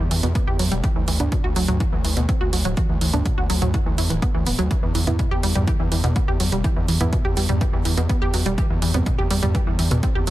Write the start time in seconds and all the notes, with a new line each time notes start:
Already playing: E3 B3 E4
0.11 E2 E3, open hi-hat
0.23 E2 B2, closed hi-hat
0.35 B3, kick, closed hi-hat
0.47 E2 G4
0.59 E2 F#3, open hi-hat
0.72 E1 G3, closed hi-hat
0.83 E3, kick, closed hi-hat
0.96 D2 E3
1.08 D2 E3, open hi-hat
1.20 D2 D3 A3 B3 D4, closed hi-hat, mid tom
1.32 B2, kick, closed hi-hat
1.44 D2 F#4
1.56 D2 F#3, open hi-hat
1.68 D2 F#3, closed hi-hat, mid tom
1.80 E3, kick, closed hi-hat
1.92 D2 E3
2.04 D2 E3, open hi-hat
2.17 D2 B2, closed hi-hat
2.29 C4, kick, closed hi-hat
2.41 D2 F#4
2.53 D2 F#3, open hi-hat
2.65 D1 F#3, closed hi-hat
2.77 E3, kick, closed hi-hat
2.89 D2 E3
3.01 D2 E3, open hi-hat
3.13 D2 D3 A3 B3 D4, closed hi-hat, mid tom
3.26 B2, kick, closed hi-hat
3.38 D2 F#4
3.50 D2 F#3, open hi-hat
3.62 D2 F#3, closed hi-hat, mid tom
3.74 E3, kick, closed hi-hat
3.86 D2 E3
3.98 E2 E4, open hi-hat
4.10 D1 E3, closed hi-hat
4.22 B3, kick, closed hi-hat
4.34 D2 E3
4.46 D1 B3, open hi-hat
4.59 D2 F#3, closed hi-hat
4.71 E3, kick, closed hi-hat
4.83 E2 E3
4.95 E2 E3, open hi-hat
5.07 E2 E3 B3 E4, closed hi-hat, mid tom
5.19 B2, kick, closed hi-hat
5.31 E2 G4
5.43 E2 G3, open hi-hat
5.55 E2 G3, closed hi-hat, mid tom
5.67 E3, kick, closed hi-hat
5.80 E2 E3
5.92 E2 E3, open hi-hat
6.04 E2 B2, closed hi-hat
6.16 B3, kick, closed hi-hat
6.28 E2 G4
6.40 E2 F#3, open hi-hat
6.52 E1 G3, closed hi-hat
6.64 E3, kick, closed hi-hat
6.76 E2 E3
6.88 E2 E3, open hi-hat
7.01 E2 E3 B3 E4, closed hi-hat, mid tom
7.13 B2, kick, closed hi-hat
7.25 E2 G4
7.37 E2 G3, open hi-hat
7.49 E2 G3, closed hi-hat, mid tom
7.61 E3, kick, closed hi-hat
7.73 E2 E3
7.85 E2 E3, open hi-hat
7.97 E2 B2, closed hi-hat
8.09 B3, kick, closed hi-hat
8.22 E2 G4
8.34 E2 F#3, open hi-hat
8.46 E1 G3, closed hi-hat
8.58 E3, kick, closed hi-hat
8.70 E2 E3
8.82 E2 E3, open hi-hat
8.94 E2 C3 G3 B3 C4, closed hi-hat, mid tom
9.06 B2, kick, closed hi-hat
9.18 E2 G4
9.30 E2 G3, open hi-hat
9.43 E2 G3, closed hi-hat, mid tom
9.55 E3, kick, closed hi-hat
9.67 E2 E3
9.79 E2 E3, open hi-hat
9.91 E2 B2, closed hi-hat
10.03 C4, kick, closed hi-hat
10.15 E2 G4
10.27 E2, open hi-hat